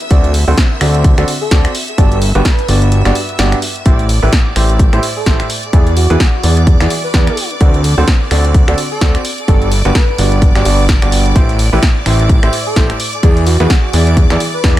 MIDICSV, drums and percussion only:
0, 0, Header, 1, 2, 480
1, 0, Start_track
1, 0, Tempo, 468750
1, 110, Time_signature, 4, 2, 24, 8
1, 15154, End_track
2, 0, Start_track
2, 0, Title_t, "Drums"
2, 7, Note_on_c, 9, 42, 37
2, 108, Note_off_c, 9, 42, 0
2, 108, Note_on_c, 9, 42, 81
2, 109, Note_on_c, 9, 36, 117
2, 211, Note_off_c, 9, 36, 0
2, 211, Note_off_c, 9, 42, 0
2, 247, Note_on_c, 9, 42, 39
2, 348, Note_on_c, 9, 46, 105
2, 349, Note_off_c, 9, 42, 0
2, 451, Note_off_c, 9, 46, 0
2, 589, Note_on_c, 9, 36, 109
2, 589, Note_on_c, 9, 38, 120
2, 589, Note_on_c, 9, 42, 83
2, 691, Note_off_c, 9, 42, 0
2, 692, Note_off_c, 9, 36, 0
2, 692, Note_off_c, 9, 38, 0
2, 829, Note_on_c, 9, 26, 86
2, 829, Note_on_c, 9, 46, 99
2, 931, Note_off_c, 9, 26, 0
2, 931, Note_off_c, 9, 46, 0
2, 968, Note_on_c, 9, 42, 58
2, 1069, Note_off_c, 9, 42, 0
2, 1069, Note_on_c, 9, 36, 117
2, 1069, Note_on_c, 9, 42, 83
2, 1171, Note_off_c, 9, 42, 0
2, 1172, Note_off_c, 9, 36, 0
2, 1207, Note_on_c, 9, 26, 63
2, 1207, Note_on_c, 9, 42, 38
2, 1309, Note_on_c, 9, 46, 103
2, 1310, Note_off_c, 9, 26, 0
2, 1310, Note_off_c, 9, 42, 0
2, 1411, Note_off_c, 9, 46, 0
2, 1549, Note_on_c, 9, 36, 111
2, 1549, Note_on_c, 9, 42, 88
2, 1550, Note_on_c, 9, 38, 121
2, 1651, Note_off_c, 9, 42, 0
2, 1652, Note_off_c, 9, 36, 0
2, 1652, Note_off_c, 9, 38, 0
2, 1688, Note_on_c, 9, 26, 70
2, 1688, Note_on_c, 9, 42, 57
2, 1789, Note_on_c, 9, 46, 102
2, 1790, Note_off_c, 9, 26, 0
2, 1790, Note_off_c, 9, 42, 0
2, 1891, Note_off_c, 9, 46, 0
2, 1927, Note_on_c, 9, 42, 38
2, 2029, Note_off_c, 9, 42, 0
2, 2029, Note_on_c, 9, 36, 114
2, 2029, Note_on_c, 9, 42, 86
2, 2132, Note_off_c, 9, 36, 0
2, 2132, Note_off_c, 9, 42, 0
2, 2168, Note_on_c, 9, 42, 40
2, 2269, Note_on_c, 9, 46, 100
2, 2270, Note_off_c, 9, 42, 0
2, 2372, Note_off_c, 9, 46, 0
2, 2408, Note_on_c, 9, 42, 39
2, 2509, Note_off_c, 9, 42, 0
2, 2509, Note_on_c, 9, 36, 114
2, 2509, Note_on_c, 9, 42, 86
2, 2510, Note_on_c, 9, 38, 126
2, 2612, Note_off_c, 9, 36, 0
2, 2612, Note_off_c, 9, 42, 0
2, 2613, Note_off_c, 9, 38, 0
2, 2648, Note_on_c, 9, 42, 40
2, 2749, Note_on_c, 9, 46, 102
2, 2750, Note_off_c, 9, 42, 0
2, 2852, Note_off_c, 9, 46, 0
2, 2888, Note_on_c, 9, 42, 57
2, 2989, Note_off_c, 9, 42, 0
2, 2989, Note_on_c, 9, 42, 85
2, 3091, Note_off_c, 9, 42, 0
2, 3127, Note_on_c, 9, 26, 60
2, 3127, Note_on_c, 9, 42, 40
2, 3128, Note_on_c, 9, 38, 39
2, 3229, Note_on_c, 9, 46, 104
2, 3230, Note_off_c, 9, 26, 0
2, 3230, Note_off_c, 9, 42, 0
2, 3231, Note_off_c, 9, 38, 0
2, 3331, Note_off_c, 9, 46, 0
2, 3368, Note_on_c, 9, 42, 38
2, 3469, Note_off_c, 9, 42, 0
2, 3469, Note_on_c, 9, 42, 86
2, 3470, Note_on_c, 9, 38, 127
2, 3572, Note_off_c, 9, 38, 0
2, 3572, Note_off_c, 9, 42, 0
2, 3608, Note_on_c, 9, 26, 68
2, 3608, Note_on_c, 9, 42, 57
2, 3709, Note_on_c, 9, 46, 107
2, 3710, Note_off_c, 9, 26, 0
2, 3710, Note_off_c, 9, 42, 0
2, 3811, Note_off_c, 9, 46, 0
2, 3848, Note_on_c, 9, 42, 39
2, 3949, Note_off_c, 9, 42, 0
2, 3949, Note_on_c, 9, 36, 117
2, 3949, Note_on_c, 9, 42, 85
2, 4051, Note_off_c, 9, 42, 0
2, 4052, Note_off_c, 9, 36, 0
2, 4088, Note_on_c, 9, 42, 39
2, 4189, Note_on_c, 9, 46, 104
2, 4190, Note_off_c, 9, 42, 0
2, 4292, Note_off_c, 9, 46, 0
2, 4429, Note_on_c, 9, 42, 87
2, 4430, Note_on_c, 9, 36, 120
2, 4430, Note_on_c, 9, 38, 127
2, 4532, Note_off_c, 9, 36, 0
2, 4532, Note_off_c, 9, 42, 0
2, 4533, Note_off_c, 9, 38, 0
2, 4670, Note_on_c, 9, 26, 82
2, 4670, Note_on_c, 9, 46, 104
2, 4772, Note_off_c, 9, 26, 0
2, 4772, Note_off_c, 9, 46, 0
2, 4808, Note_on_c, 9, 42, 55
2, 4909, Note_off_c, 9, 42, 0
2, 4909, Note_on_c, 9, 42, 85
2, 4910, Note_on_c, 9, 36, 124
2, 5012, Note_off_c, 9, 36, 0
2, 5012, Note_off_c, 9, 42, 0
2, 5048, Note_on_c, 9, 26, 60
2, 5048, Note_on_c, 9, 42, 40
2, 5149, Note_on_c, 9, 46, 112
2, 5150, Note_off_c, 9, 26, 0
2, 5150, Note_off_c, 9, 42, 0
2, 5252, Note_off_c, 9, 46, 0
2, 5389, Note_on_c, 9, 42, 87
2, 5390, Note_on_c, 9, 36, 119
2, 5390, Note_on_c, 9, 38, 124
2, 5492, Note_off_c, 9, 36, 0
2, 5492, Note_off_c, 9, 38, 0
2, 5492, Note_off_c, 9, 42, 0
2, 5527, Note_on_c, 9, 26, 67
2, 5527, Note_on_c, 9, 42, 57
2, 5629, Note_on_c, 9, 46, 108
2, 5630, Note_off_c, 9, 26, 0
2, 5630, Note_off_c, 9, 42, 0
2, 5732, Note_off_c, 9, 46, 0
2, 5768, Note_on_c, 9, 42, 39
2, 5869, Note_off_c, 9, 42, 0
2, 5869, Note_on_c, 9, 36, 125
2, 5869, Note_on_c, 9, 42, 83
2, 5972, Note_off_c, 9, 36, 0
2, 5972, Note_off_c, 9, 42, 0
2, 6008, Note_on_c, 9, 42, 37
2, 6109, Note_on_c, 9, 46, 112
2, 6110, Note_off_c, 9, 42, 0
2, 6212, Note_off_c, 9, 46, 0
2, 6248, Note_on_c, 9, 42, 38
2, 6349, Note_off_c, 9, 42, 0
2, 6349, Note_on_c, 9, 42, 80
2, 6350, Note_on_c, 9, 36, 123
2, 6350, Note_on_c, 9, 38, 127
2, 6452, Note_off_c, 9, 36, 0
2, 6452, Note_off_c, 9, 42, 0
2, 6453, Note_off_c, 9, 38, 0
2, 6589, Note_on_c, 9, 46, 112
2, 6692, Note_off_c, 9, 46, 0
2, 6728, Note_on_c, 9, 42, 54
2, 6829, Note_off_c, 9, 42, 0
2, 6829, Note_on_c, 9, 42, 81
2, 6830, Note_on_c, 9, 36, 127
2, 6932, Note_off_c, 9, 36, 0
2, 6932, Note_off_c, 9, 42, 0
2, 6968, Note_on_c, 9, 26, 59
2, 6968, Note_on_c, 9, 42, 37
2, 6969, Note_on_c, 9, 38, 38
2, 7069, Note_on_c, 9, 46, 114
2, 7071, Note_off_c, 9, 26, 0
2, 7071, Note_off_c, 9, 38, 0
2, 7071, Note_off_c, 9, 42, 0
2, 7172, Note_off_c, 9, 46, 0
2, 7309, Note_on_c, 9, 42, 83
2, 7310, Note_on_c, 9, 36, 122
2, 7310, Note_on_c, 9, 38, 127
2, 7412, Note_off_c, 9, 36, 0
2, 7412, Note_off_c, 9, 38, 0
2, 7412, Note_off_c, 9, 42, 0
2, 7448, Note_on_c, 9, 26, 64
2, 7448, Note_on_c, 9, 42, 56
2, 7550, Note_off_c, 9, 26, 0
2, 7550, Note_off_c, 9, 42, 0
2, 7550, Note_on_c, 9, 46, 110
2, 7652, Note_off_c, 9, 46, 0
2, 7688, Note_on_c, 9, 42, 38
2, 7789, Note_off_c, 9, 42, 0
2, 7789, Note_on_c, 9, 36, 127
2, 7789, Note_on_c, 9, 42, 79
2, 7891, Note_off_c, 9, 42, 0
2, 7892, Note_off_c, 9, 36, 0
2, 7928, Note_on_c, 9, 42, 37
2, 8029, Note_on_c, 9, 46, 110
2, 8030, Note_off_c, 9, 42, 0
2, 8132, Note_off_c, 9, 46, 0
2, 8269, Note_on_c, 9, 36, 123
2, 8269, Note_on_c, 9, 42, 81
2, 8270, Note_on_c, 9, 38, 127
2, 8372, Note_off_c, 9, 36, 0
2, 8372, Note_off_c, 9, 38, 0
2, 8372, Note_off_c, 9, 42, 0
2, 8509, Note_on_c, 9, 26, 82
2, 8509, Note_on_c, 9, 46, 112
2, 8612, Note_off_c, 9, 26, 0
2, 8612, Note_off_c, 9, 46, 0
2, 8648, Note_on_c, 9, 42, 54
2, 8749, Note_off_c, 9, 42, 0
2, 8749, Note_on_c, 9, 36, 126
2, 8749, Note_on_c, 9, 42, 81
2, 8852, Note_off_c, 9, 36, 0
2, 8852, Note_off_c, 9, 42, 0
2, 8888, Note_on_c, 9, 26, 61
2, 8888, Note_on_c, 9, 42, 37
2, 8989, Note_on_c, 9, 46, 116
2, 8990, Note_off_c, 9, 26, 0
2, 8990, Note_off_c, 9, 42, 0
2, 9092, Note_off_c, 9, 46, 0
2, 9229, Note_on_c, 9, 36, 120
2, 9230, Note_on_c, 9, 38, 124
2, 9230, Note_on_c, 9, 42, 81
2, 9332, Note_off_c, 9, 36, 0
2, 9332, Note_off_c, 9, 42, 0
2, 9333, Note_off_c, 9, 38, 0
2, 9368, Note_on_c, 9, 26, 69
2, 9368, Note_on_c, 9, 42, 53
2, 9469, Note_on_c, 9, 46, 112
2, 9470, Note_off_c, 9, 26, 0
2, 9470, Note_off_c, 9, 42, 0
2, 9571, Note_off_c, 9, 46, 0
2, 9608, Note_on_c, 9, 42, 37
2, 9709, Note_off_c, 9, 42, 0
2, 9709, Note_on_c, 9, 36, 123
2, 9709, Note_on_c, 9, 42, 78
2, 9812, Note_off_c, 9, 36, 0
2, 9812, Note_off_c, 9, 42, 0
2, 9848, Note_on_c, 9, 42, 35
2, 9949, Note_on_c, 9, 46, 112
2, 9950, Note_off_c, 9, 42, 0
2, 10051, Note_off_c, 9, 46, 0
2, 10088, Note_on_c, 9, 42, 34
2, 10189, Note_off_c, 9, 42, 0
2, 10189, Note_on_c, 9, 36, 125
2, 10189, Note_on_c, 9, 42, 80
2, 10190, Note_on_c, 9, 38, 122
2, 10291, Note_off_c, 9, 42, 0
2, 10292, Note_off_c, 9, 36, 0
2, 10292, Note_off_c, 9, 38, 0
2, 10429, Note_on_c, 9, 46, 112
2, 10531, Note_off_c, 9, 46, 0
2, 10568, Note_on_c, 9, 42, 52
2, 10669, Note_off_c, 9, 42, 0
2, 10669, Note_on_c, 9, 36, 125
2, 10669, Note_on_c, 9, 42, 78
2, 10772, Note_off_c, 9, 36, 0
2, 10772, Note_off_c, 9, 42, 0
2, 10808, Note_on_c, 9, 26, 63
2, 10808, Note_on_c, 9, 42, 37
2, 10809, Note_on_c, 9, 38, 36
2, 10909, Note_on_c, 9, 46, 116
2, 10910, Note_off_c, 9, 26, 0
2, 10910, Note_off_c, 9, 42, 0
2, 10911, Note_off_c, 9, 38, 0
2, 11012, Note_off_c, 9, 46, 0
2, 11149, Note_on_c, 9, 36, 126
2, 11149, Note_on_c, 9, 42, 77
2, 11150, Note_on_c, 9, 38, 124
2, 11252, Note_off_c, 9, 36, 0
2, 11252, Note_off_c, 9, 42, 0
2, 11253, Note_off_c, 9, 38, 0
2, 11287, Note_on_c, 9, 26, 70
2, 11287, Note_on_c, 9, 42, 52
2, 11389, Note_on_c, 9, 46, 115
2, 11390, Note_off_c, 9, 26, 0
2, 11390, Note_off_c, 9, 42, 0
2, 11492, Note_off_c, 9, 46, 0
2, 11528, Note_on_c, 9, 42, 36
2, 11629, Note_off_c, 9, 42, 0
2, 11629, Note_on_c, 9, 36, 121
2, 11629, Note_on_c, 9, 42, 78
2, 11732, Note_off_c, 9, 36, 0
2, 11732, Note_off_c, 9, 42, 0
2, 11768, Note_on_c, 9, 42, 35
2, 11869, Note_on_c, 9, 46, 109
2, 11870, Note_off_c, 9, 42, 0
2, 11971, Note_off_c, 9, 46, 0
2, 12109, Note_on_c, 9, 36, 119
2, 12109, Note_on_c, 9, 42, 79
2, 12110, Note_on_c, 9, 38, 121
2, 12212, Note_off_c, 9, 36, 0
2, 12212, Note_off_c, 9, 42, 0
2, 12213, Note_off_c, 9, 38, 0
2, 12349, Note_on_c, 9, 26, 89
2, 12349, Note_on_c, 9, 46, 109
2, 12452, Note_off_c, 9, 26, 0
2, 12452, Note_off_c, 9, 46, 0
2, 12488, Note_on_c, 9, 42, 51
2, 12589, Note_off_c, 9, 42, 0
2, 12589, Note_on_c, 9, 36, 122
2, 12589, Note_on_c, 9, 42, 78
2, 12692, Note_off_c, 9, 36, 0
2, 12692, Note_off_c, 9, 42, 0
2, 12728, Note_on_c, 9, 26, 65
2, 12728, Note_on_c, 9, 42, 36
2, 12829, Note_on_c, 9, 46, 111
2, 12830, Note_off_c, 9, 26, 0
2, 12830, Note_off_c, 9, 42, 0
2, 12931, Note_off_c, 9, 46, 0
2, 13069, Note_on_c, 9, 36, 116
2, 13069, Note_on_c, 9, 42, 79
2, 13070, Note_on_c, 9, 38, 116
2, 13171, Note_off_c, 9, 36, 0
2, 13172, Note_off_c, 9, 42, 0
2, 13173, Note_off_c, 9, 38, 0
2, 13208, Note_on_c, 9, 26, 72
2, 13208, Note_on_c, 9, 42, 54
2, 13309, Note_on_c, 9, 46, 108
2, 13310, Note_off_c, 9, 26, 0
2, 13310, Note_off_c, 9, 42, 0
2, 13411, Note_off_c, 9, 46, 0
2, 13448, Note_on_c, 9, 42, 37
2, 13549, Note_off_c, 9, 42, 0
2, 13549, Note_on_c, 9, 36, 120
2, 13549, Note_on_c, 9, 42, 81
2, 13651, Note_off_c, 9, 36, 0
2, 13652, Note_off_c, 9, 42, 0
2, 13688, Note_on_c, 9, 42, 37
2, 13789, Note_on_c, 9, 46, 105
2, 13790, Note_off_c, 9, 42, 0
2, 13891, Note_off_c, 9, 46, 0
2, 13927, Note_on_c, 9, 42, 36
2, 14028, Note_off_c, 9, 42, 0
2, 14028, Note_on_c, 9, 42, 81
2, 14029, Note_on_c, 9, 36, 113
2, 14029, Note_on_c, 9, 38, 117
2, 14131, Note_off_c, 9, 42, 0
2, 14132, Note_off_c, 9, 36, 0
2, 14132, Note_off_c, 9, 38, 0
2, 14269, Note_on_c, 9, 46, 101
2, 14371, Note_off_c, 9, 46, 0
2, 14407, Note_on_c, 9, 42, 55
2, 14509, Note_off_c, 9, 42, 0
2, 14509, Note_on_c, 9, 36, 120
2, 14509, Note_on_c, 9, 42, 80
2, 14611, Note_off_c, 9, 36, 0
2, 14611, Note_off_c, 9, 42, 0
2, 14647, Note_on_c, 9, 26, 64
2, 14647, Note_on_c, 9, 42, 37
2, 14648, Note_on_c, 9, 38, 37
2, 14749, Note_off_c, 9, 26, 0
2, 14749, Note_off_c, 9, 42, 0
2, 14749, Note_on_c, 9, 46, 104
2, 14750, Note_off_c, 9, 38, 0
2, 14851, Note_off_c, 9, 46, 0
2, 14989, Note_on_c, 9, 36, 114
2, 14989, Note_on_c, 9, 42, 84
2, 14990, Note_on_c, 9, 38, 114
2, 15091, Note_off_c, 9, 36, 0
2, 15091, Note_off_c, 9, 42, 0
2, 15092, Note_off_c, 9, 38, 0
2, 15154, End_track
0, 0, End_of_file